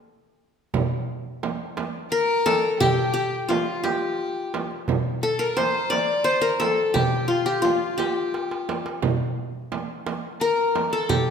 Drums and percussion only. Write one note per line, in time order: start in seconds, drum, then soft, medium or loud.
0.74 darbuka dum medium
0.74 frame drum loud
1.43 darbuka tek medium
1.43 frame drum medium
1.77 darbuka tek medium
1.77 frame drum medium
2.46 darbuka tek medium
2.46 frame drum medium
2.64 darbuka ka soft
2.81 darbuka dum medium
2.81 frame drum medium
3.50 darbuka tek medium
3.50 frame drum medium
3.85 darbuka tek medium
3.85 frame drum medium
4.54 darbuka tek medium
4.54 frame drum medium
4.71 darbuka ka soft
4.88 darbuka dum medium
4.88 frame drum medium
5.57 darbuka tek medium
5.57 frame drum medium
5.92 darbuka tek medium
5.92 frame drum medium
6.61 darbuka tek medium
6.61 frame drum medium
6.79 darbuka ka soft
6.95 darbuka dum medium
6.95 frame drum medium
7.65 darbuka tek medium
7.65 frame drum medium
7.99 darbuka tek medium
7.99 frame drum medium
8.34 darbuka tek medium
8.51 darbuka ka medium
8.69 darbuka tek medium
8.69 frame drum medium
8.86 darbuka ka medium
9.02 frame drum loud
9.02 darbuka dum medium
9.72 darbuka tek medium
9.72 frame drum medium
10.07 darbuka tek medium
10.07 frame drum medium
10.75 darbuka tek medium
10.75 frame drum medium
10.93 darbuka ka soft
11.10 frame drum medium
11.10 darbuka dum medium